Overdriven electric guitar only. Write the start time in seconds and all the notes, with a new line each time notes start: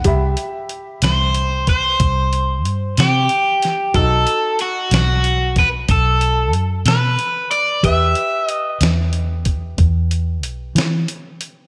1.05 C5
1.69 C5
3.00 G4
3.96 A4
4.62 F#4
4.95 F#4
5.59 B4
5.91 A4
6.88 B4
7.51 D5
7.85 E5
8.47 D#5